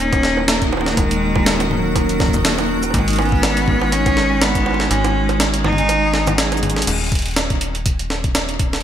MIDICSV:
0, 0, Header, 1, 6, 480
1, 0, Start_track
1, 0, Tempo, 491803
1, 949, Time_signature, 4, 2, 24, 8
1, 8620, End_track
2, 0, Start_track
2, 0, Title_t, "Ambient pad"
2, 0, Program_c, 0, 92
2, 0, Note_on_c, 0, 51, 70
2, 0, Note_on_c, 0, 61, 93
2, 0, Note_on_c, 0, 66, 86
2, 0, Note_on_c, 0, 70, 92
2, 3320, Note_on_c, 0, 56, 70
2, 4363, Note_off_c, 0, 70, 0
2, 6709, Note_off_c, 0, 61, 0
2, 6709, Note_off_c, 0, 66, 0
2, 6710, Note_off_c, 0, 51, 0
2, 6710, Note_off_c, 0, 56, 0
2, 8620, End_track
3, 0, Start_track
3, 0, Title_t, "Vibraphone"
3, 0, Program_c, 1, 11
3, 0, Control_c, 1, 64, 127
3, 0, Note_on_c, 1, 58, 101
3, 0, Note_on_c, 1, 63, 83
3, 109, Note_off_c, 1, 63, 0
3, 229, Note_off_c, 1, 58, 0
3, 229, Note_on_c, 1, 58, 79
3, 349, Note_off_c, 1, 58, 0
3, 470, Note_on_c, 1, 58, 102
3, 541, Note_off_c, 1, 58, 0
3, 603, Note_on_c, 1, 63, 100
3, 660, Note_off_c, 1, 63, 0
3, 844, Note_on_c, 1, 63, 82
3, 938, Note_off_c, 1, 63, 0
3, 1084, Note_on_c, 1, 58, 78
3, 1178, Note_off_c, 1, 58, 0
3, 1324, Note_on_c, 1, 58, 98
3, 1380, Note_off_c, 1, 58, 0
3, 1429, Note_on_c, 1, 63, 99
3, 1501, Note_off_c, 1, 63, 0
3, 1670, Note_on_c, 1, 63, 79
3, 1789, Note_off_c, 1, 63, 0
3, 1910, Note_on_c, 1, 58, 86
3, 2029, Note_off_c, 1, 58, 0
3, 2149, Note_on_c, 1, 58, 104
3, 2221, Note_off_c, 1, 58, 0
3, 2283, Note_on_c, 1, 63, 103
3, 2340, Note_off_c, 1, 63, 0
3, 2524, Note_on_c, 1, 63, 75
3, 2618, Note_off_c, 1, 63, 0
3, 2764, Note_on_c, 1, 58, 83
3, 2858, Note_off_c, 1, 58, 0
3, 2882, Control_c, 1, 64, 0
3, 3004, Note_on_c, 1, 63, 110
3, 3038, Control_c, 1, 64, 127
3, 3060, Note_off_c, 1, 63, 0
3, 3109, Note_on_c, 1, 56, 107
3, 3181, Note_off_c, 1, 56, 0
3, 3349, Note_on_c, 1, 56, 85
3, 3469, Note_off_c, 1, 56, 0
3, 3590, Note_on_c, 1, 63, 74
3, 3709, Note_off_c, 1, 63, 0
3, 3829, Note_on_c, 1, 63, 100
3, 3901, Note_off_c, 1, 63, 0
3, 3964, Note_on_c, 1, 56, 106
3, 4020, Note_off_c, 1, 56, 0
3, 4204, Note_on_c, 1, 56, 79
3, 4298, Note_off_c, 1, 56, 0
3, 4444, Note_on_c, 1, 63, 77
3, 4538, Note_off_c, 1, 63, 0
3, 4684, Note_on_c, 1, 63, 104
3, 4740, Note_off_c, 1, 63, 0
3, 4789, Note_on_c, 1, 56, 106
3, 4861, Note_off_c, 1, 56, 0
3, 5029, Note_on_c, 1, 56, 84
3, 5149, Note_off_c, 1, 56, 0
3, 5270, Note_on_c, 1, 63, 84
3, 5389, Note_off_c, 1, 63, 0
3, 5510, Note_on_c, 1, 63, 105
3, 5581, Note_off_c, 1, 63, 0
3, 5643, Note_on_c, 1, 56, 101
3, 5700, Note_off_c, 1, 56, 0
3, 5884, Note_on_c, 1, 56, 81
3, 5978, Note_off_c, 1, 56, 0
3, 5989, Note_on_c, 1, 56, 81
3, 6061, Note_off_c, 1, 56, 0
3, 6124, Note_on_c, 1, 54, 79
3, 6224, Note_off_c, 1, 54, 0
3, 6229, Note_on_c, 1, 68, 99
3, 6349, Note_off_c, 1, 68, 0
3, 6364, Note_on_c, 1, 63, 77
3, 6464, Note_off_c, 1, 63, 0
3, 6470, Note_on_c, 1, 61, 80
3, 6541, Note_off_c, 1, 61, 0
3, 6721, Control_c, 1, 64, 0
3, 8620, End_track
4, 0, Start_track
4, 0, Title_t, "Cello"
4, 0, Program_c, 2, 42
4, 0, Note_on_c, 2, 61, 115
4, 463, Note_off_c, 2, 61, 0
4, 469, Note_on_c, 2, 58, 96
4, 949, Note_on_c, 2, 56, 108
4, 964, Note_off_c, 2, 58, 0
4, 1670, Note_on_c, 2, 54, 90
4, 1684, Note_off_c, 2, 56, 0
4, 2629, Note_off_c, 2, 54, 0
4, 2869, Note_on_c, 2, 56, 96
4, 3108, Note_on_c, 2, 59, 112
4, 3122, Note_off_c, 2, 56, 0
4, 3826, Note_on_c, 2, 61, 123
4, 3841, Note_off_c, 2, 59, 0
4, 4306, Note_on_c, 2, 59, 106
4, 4321, Note_off_c, 2, 61, 0
4, 4787, Note_on_c, 2, 61, 100
4, 4802, Note_off_c, 2, 59, 0
4, 5268, Note_off_c, 2, 61, 0
4, 5509, Note_on_c, 2, 63, 127
4, 6430, Note_off_c, 2, 63, 0
4, 8620, End_track
5, 0, Start_track
5, 0, Title_t, "FM bass"
5, 0, Program_c, 3, 39
5, 0, Note_on_c, 3, 27, 91
5, 928, Note_off_c, 3, 27, 0
5, 949, Note_on_c, 3, 27, 87
5, 2848, Note_off_c, 3, 27, 0
5, 2869, Note_on_c, 3, 32, 93
5, 4768, Note_off_c, 3, 32, 0
5, 4790, Note_on_c, 3, 32, 88
5, 6688, Note_off_c, 3, 32, 0
5, 6709, Note_on_c, 3, 27, 90
5, 8608, Note_off_c, 3, 27, 0
5, 8620, End_track
6, 0, Start_track
6, 0, Title_t, "Drums"
6, 122, Note_on_c, 9, 42, 53
6, 122, Note_on_c, 9, 60, 75
6, 123, Note_on_c, 9, 36, 114
6, 220, Note_off_c, 9, 42, 0
6, 220, Note_off_c, 9, 60, 0
6, 221, Note_off_c, 9, 36, 0
6, 228, Note_on_c, 9, 38, 61
6, 326, Note_off_c, 9, 38, 0
6, 363, Note_on_c, 9, 60, 53
6, 460, Note_off_c, 9, 60, 0
6, 469, Note_on_c, 9, 38, 122
6, 469, Note_on_c, 9, 42, 78
6, 566, Note_off_c, 9, 38, 0
6, 566, Note_off_c, 9, 42, 0
6, 603, Note_on_c, 9, 36, 84
6, 603, Note_on_c, 9, 42, 50
6, 700, Note_off_c, 9, 42, 0
6, 701, Note_off_c, 9, 36, 0
6, 708, Note_on_c, 9, 60, 74
6, 753, Note_off_c, 9, 60, 0
6, 753, Note_on_c, 9, 60, 63
6, 789, Note_off_c, 9, 60, 0
6, 789, Note_on_c, 9, 60, 49
6, 844, Note_off_c, 9, 60, 0
6, 844, Note_on_c, 9, 38, 58
6, 844, Note_on_c, 9, 60, 38
6, 870, Note_off_c, 9, 60, 0
6, 870, Note_on_c, 9, 60, 32
6, 914, Note_off_c, 9, 60, 0
6, 914, Note_on_c, 9, 60, 27
6, 941, Note_off_c, 9, 38, 0
6, 949, Note_off_c, 9, 60, 0
6, 949, Note_on_c, 9, 36, 102
6, 949, Note_on_c, 9, 42, 76
6, 949, Note_on_c, 9, 60, 51
6, 1047, Note_off_c, 9, 36, 0
6, 1047, Note_off_c, 9, 42, 0
6, 1047, Note_off_c, 9, 60, 0
6, 1084, Note_on_c, 9, 42, 55
6, 1182, Note_off_c, 9, 42, 0
6, 1323, Note_on_c, 9, 36, 119
6, 1324, Note_on_c, 9, 60, 77
6, 1421, Note_off_c, 9, 36, 0
6, 1421, Note_off_c, 9, 60, 0
6, 1429, Note_on_c, 9, 38, 117
6, 1429, Note_on_c, 9, 42, 77
6, 1526, Note_off_c, 9, 38, 0
6, 1526, Note_off_c, 9, 42, 0
6, 1563, Note_on_c, 9, 42, 51
6, 1563, Note_on_c, 9, 60, 55
6, 1661, Note_off_c, 9, 42, 0
6, 1661, Note_off_c, 9, 60, 0
6, 1669, Note_on_c, 9, 64, 97
6, 1767, Note_off_c, 9, 64, 0
6, 1909, Note_on_c, 9, 36, 97
6, 1909, Note_on_c, 9, 42, 73
6, 1909, Note_on_c, 9, 60, 77
6, 2007, Note_off_c, 9, 36, 0
6, 2007, Note_off_c, 9, 42, 0
6, 2007, Note_off_c, 9, 60, 0
6, 2043, Note_on_c, 9, 42, 53
6, 2141, Note_off_c, 9, 42, 0
6, 2149, Note_on_c, 9, 36, 103
6, 2149, Note_on_c, 9, 38, 59
6, 2149, Note_on_c, 9, 60, 50
6, 2229, Note_off_c, 9, 36, 0
6, 2229, Note_on_c, 9, 36, 83
6, 2246, Note_off_c, 9, 38, 0
6, 2246, Note_off_c, 9, 60, 0
6, 2283, Note_on_c, 9, 64, 94
6, 2283, Note_on_c, 9, 82, 83
6, 2309, Note_off_c, 9, 36, 0
6, 2309, Note_on_c, 9, 36, 65
6, 2381, Note_off_c, 9, 64, 0
6, 2381, Note_off_c, 9, 82, 0
6, 2389, Note_on_c, 9, 38, 118
6, 2389, Note_on_c, 9, 42, 78
6, 2407, Note_off_c, 9, 36, 0
6, 2486, Note_off_c, 9, 38, 0
6, 2486, Note_off_c, 9, 42, 0
6, 2523, Note_on_c, 9, 42, 49
6, 2523, Note_on_c, 9, 60, 76
6, 2621, Note_off_c, 9, 42, 0
6, 2621, Note_off_c, 9, 60, 0
6, 2764, Note_on_c, 9, 60, 24
6, 2764, Note_on_c, 9, 82, 82
6, 2834, Note_off_c, 9, 60, 0
6, 2834, Note_on_c, 9, 60, 31
6, 2861, Note_off_c, 9, 82, 0
6, 2869, Note_on_c, 9, 36, 102
6, 2869, Note_on_c, 9, 42, 76
6, 2914, Note_off_c, 9, 60, 0
6, 2914, Note_on_c, 9, 60, 39
6, 2967, Note_off_c, 9, 36, 0
6, 2967, Note_off_c, 9, 42, 0
6, 3004, Note_on_c, 9, 42, 50
6, 3012, Note_off_c, 9, 60, 0
6, 3030, Note_off_c, 9, 42, 0
6, 3030, Note_on_c, 9, 42, 43
6, 3056, Note_off_c, 9, 42, 0
6, 3056, Note_on_c, 9, 42, 36
6, 3083, Note_off_c, 9, 42, 0
6, 3083, Note_on_c, 9, 42, 28
6, 3109, Note_off_c, 9, 42, 0
6, 3109, Note_on_c, 9, 42, 23
6, 3109, Note_on_c, 9, 60, 85
6, 3176, Note_off_c, 9, 42, 0
6, 3176, Note_on_c, 9, 42, 15
6, 3207, Note_off_c, 9, 60, 0
6, 3210, Note_off_c, 9, 42, 0
6, 3210, Note_on_c, 9, 42, 13
6, 3243, Note_on_c, 9, 36, 118
6, 3308, Note_off_c, 9, 42, 0
6, 3341, Note_off_c, 9, 36, 0
6, 3350, Note_on_c, 9, 38, 108
6, 3350, Note_on_c, 9, 42, 79
6, 3350, Note_on_c, 9, 60, 53
6, 3447, Note_off_c, 9, 38, 0
6, 3447, Note_off_c, 9, 42, 0
6, 3447, Note_off_c, 9, 60, 0
6, 3484, Note_on_c, 9, 42, 53
6, 3581, Note_off_c, 9, 42, 0
6, 3589, Note_on_c, 9, 36, 80
6, 3589, Note_on_c, 9, 64, 101
6, 3687, Note_off_c, 9, 36, 0
6, 3687, Note_off_c, 9, 64, 0
6, 3724, Note_on_c, 9, 60, 84
6, 3821, Note_off_c, 9, 60, 0
6, 3829, Note_on_c, 9, 42, 73
6, 3927, Note_off_c, 9, 42, 0
6, 3964, Note_on_c, 9, 36, 109
6, 3964, Note_on_c, 9, 42, 56
6, 3964, Note_on_c, 9, 60, 56
6, 4061, Note_off_c, 9, 36, 0
6, 4061, Note_off_c, 9, 42, 0
6, 4061, Note_off_c, 9, 60, 0
6, 4069, Note_on_c, 9, 38, 58
6, 4167, Note_off_c, 9, 38, 0
6, 4309, Note_on_c, 9, 38, 115
6, 4309, Note_on_c, 9, 42, 75
6, 4309, Note_on_c, 9, 60, 87
6, 4407, Note_off_c, 9, 38, 0
6, 4407, Note_off_c, 9, 42, 0
6, 4407, Note_off_c, 9, 60, 0
6, 4443, Note_on_c, 9, 42, 51
6, 4444, Note_on_c, 9, 36, 81
6, 4541, Note_off_c, 9, 36, 0
6, 4541, Note_off_c, 9, 42, 0
6, 4549, Note_on_c, 9, 60, 56
6, 4594, Note_off_c, 9, 60, 0
6, 4594, Note_on_c, 9, 60, 45
6, 4629, Note_off_c, 9, 60, 0
6, 4629, Note_on_c, 9, 60, 35
6, 4684, Note_off_c, 9, 60, 0
6, 4684, Note_on_c, 9, 38, 59
6, 4684, Note_on_c, 9, 60, 28
6, 4709, Note_off_c, 9, 60, 0
6, 4709, Note_on_c, 9, 60, 24
6, 4754, Note_off_c, 9, 60, 0
6, 4754, Note_on_c, 9, 60, 18
6, 4782, Note_off_c, 9, 38, 0
6, 4790, Note_on_c, 9, 42, 79
6, 4852, Note_off_c, 9, 60, 0
6, 4887, Note_off_c, 9, 42, 0
6, 4924, Note_on_c, 9, 42, 56
6, 4924, Note_on_c, 9, 60, 85
6, 5022, Note_off_c, 9, 42, 0
6, 5022, Note_off_c, 9, 60, 0
6, 5164, Note_on_c, 9, 42, 38
6, 5164, Note_on_c, 9, 60, 59
6, 5262, Note_off_c, 9, 42, 0
6, 5262, Note_off_c, 9, 60, 0
6, 5270, Note_on_c, 9, 38, 112
6, 5270, Note_on_c, 9, 42, 77
6, 5367, Note_off_c, 9, 38, 0
6, 5367, Note_off_c, 9, 42, 0
6, 5403, Note_on_c, 9, 42, 58
6, 5501, Note_off_c, 9, 42, 0
6, 5509, Note_on_c, 9, 60, 85
6, 5509, Note_on_c, 9, 64, 96
6, 5589, Note_off_c, 9, 64, 0
6, 5589, Note_on_c, 9, 64, 80
6, 5607, Note_off_c, 9, 60, 0
6, 5643, Note_on_c, 9, 42, 37
6, 5669, Note_off_c, 9, 64, 0
6, 5669, Note_on_c, 9, 64, 62
6, 5741, Note_off_c, 9, 42, 0
6, 5749, Note_on_c, 9, 42, 77
6, 5749, Note_on_c, 9, 60, 54
6, 5767, Note_off_c, 9, 64, 0
6, 5846, Note_off_c, 9, 42, 0
6, 5846, Note_off_c, 9, 60, 0
6, 5989, Note_on_c, 9, 38, 60
6, 6086, Note_off_c, 9, 38, 0
6, 6123, Note_on_c, 9, 42, 38
6, 6123, Note_on_c, 9, 60, 83
6, 6123, Note_on_c, 9, 64, 97
6, 6123, Note_on_c, 9, 82, 80
6, 6221, Note_off_c, 9, 42, 0
6, 6221, Note_off_c, 9, 60, 0
6, 6221, Note_off_c, 9, 64, 0
6, 6221, Note_off_c, 9, 82, 0
6, 6229, Note_on_c, 9, 38, 116
6, 6229, Note_on_c, 9, 42, 77
6, 6326, Note_off_c, 9, 38, 0
6, 6326, Note_off_c, 9, 42, 0
6, 6363, Note_on_c, 9, 42, 55
6, 6363, Note_on_c, 9, 60, 56
6, 6416, Note_on_c, 9, 82, 62
6, 6461, Note_off_c, 9, 42, 0
6, 6461, Note_off_c, 9, 60, 0
6, 6468, Note_on_c, 9, 42, 55
6, 6468, Note_on_c, 9, 64, 92
6, 6514, Note_off_c, 9, 82, 0
6, 6535, Note_off_c, 9, 42, 0
6, 6535, Note_on_c, 9, 42, 70
6, 6566, Note_off_c, 9, 64, 0
6, 6603, Note_on_c, 9, 38, 59
6, 6633, Note_off_c, 9, 42, 0
6, 6656, Note_on_c, 9, 42, 83
6, 6700, Note_off_c, 9, 38, 0
6, 6709, Note_off_c, 9, 42, 0
6, 6709, Note_on_c, 9, 42, 91
6, 6709, Note_on_c, 9, 49, 91
6, 6806, Note_off_c, 9, 42, 0
6, 6806, Note_off_c, 9, 49, 0
6, 6843, Note_on_c, 9, 42, 19
6, 6869, Note_off_c, 9, 42, 0
6, 6869, Note_on_c, 9, 42, 21
6, 6895, Note_off_c, 9, 42, 0
6, 6895, Note_on_c, 9, 42, 24
6, 6922, Note_off_c, 9, 42, 0
6, 6922, Note_on_c, 9, 42, 26
6, 6948, Note_off_c, 9, 42, 0
6, 6948, Note_on_c, 9, 42, 65
6, 6949, Note_on_c, 9, 36, 107
6, 6981, Note_off_c, 9, 42, 0
6, 6981, Note_on_c, 9, 42, 54
6, 7015, Note_off_c, 9, 42, 0
6, 7015, Note_on_c, 9, 42, 43
6, 7047, Note_off_c, 9, 36, 0
6, 7048, Note_off_c, 9, 42, 0
6, 7048, Note_on_c, 9, 42, 36
6, 7082, Note_off_c, 9, 42, 0
6, 7082, Note_on_c, 9, 42, 40
6, 7109, Note_off_c, 9, 42, 0
6, 7109, Note_on_c, 9, 42, 25
6, 7135, Note_off_c, 9, 42, 0
6, 7135, Note_on_c, 9, 42, 19
6, 7162, Note_off_c, 9, 42, 0
6, 7162, Note_on_c, 9, 42, 16
6, 7188, Note_off_c, 9, 42, 0
6, 7188, Note_on_c, 9, 38, 109
6, 7188, Note_on_c, 9, 42, 88
6, 7286, Note_off_c, 9, 38, 0
6, 7286, Note_off_c, 9, 42, 0
6, 7322, Note_on_c, 9, 42, 40
6, 7323, Note_on_c, 9, 36, 97
6, 7420, Note_off_c, 9, 42, 0
6, 7421, Note_off_c, 9, 36, 0
6, 7428, Note_on_c, 9, 42, 71
6, 7526, Note_off_c, 9, 42, 0
6, 7563, Note_on_c, 9, 42, 39
6, 7660, Note_off_c, 9, 42, 0
6, 7668, Note_on_c, 9, 42, 92
6, 7669, Note_on_c, 9, 36, 116
6, 7766, Note_off_c, 9, 42, 0
6, 7767, Note_off_c, 9, 36, 0
6, 7802, Note_on_c, 9, 42, 43
6, 7900, Note_off_c, 9, 42, 0
6, 7908, Note_on_c, 9, 38, 58
6, 8006, Note_off_c, 9, 38, 0
6, 8043, Note_on_c, 9, 36, 102
6, 8043, Note_on_c, 9, 42, 39
6, 8140, Note_off_c, 9, 42, 0
6, 8141, Note_off_c, 9, 36, 0
6, 8148, Note_on_c, 9, 38, 110
6, 8148, Note_on_c, 9, 42, 93
6, 8246, Note_off_c, 9, 38, 0
6, 8246, Note_off_c, 9, 42, 0
6, 8283, Note_on_c, 9, 42, 38
6, 8381, Note_off_c, 9, 42, 0
6, 8389, Note_on_c, 9, 36, 120
6, 8389, Note_on_c, 9, 42, 66
6, 8486, Note_off_c, 9, 36, 0
6, 8486, Note_off_c, 9, 42, 0
6, 8523, Note_on_c, 9, 38, 57
6, 8523, Note_on_c, 9, 42, 37
6, 8549, Note_off_c, 9, 42, 0
6, 8549, Note_on_c, 9, 42, 31
6, 8620, Note_off_c, 9, 38, 0
6, 8620, Note_off_c, 9, 42, 0
6, 8620, End_track
0, 0, End_of_file